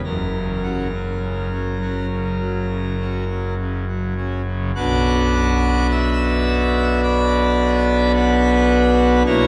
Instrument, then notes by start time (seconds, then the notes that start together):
pipe organ
0.04 F#1 F#2 A#4
0.34 C#3
0.63 C#4 F#4
0.93 F#3
1.23 C#3
1.52 F#3
1.82 C#4 F#4
2.12 C#3
2.41 F#3
2.69 C#3
3.00 C#4 F#4
3.30 F#3
3.59 C#3
3.88 F#3
4.17 C#4 F#4
4.47 C#3
4.75 B1 B2 B3 D4 F#4 F#5 D6 F#6
5.91 E5 E6
7.03 D5 B5 D6
8.15 B4 F#5 B5
9.26 B1 B2 A#3 E4 F#4 C#5 A#5 C#6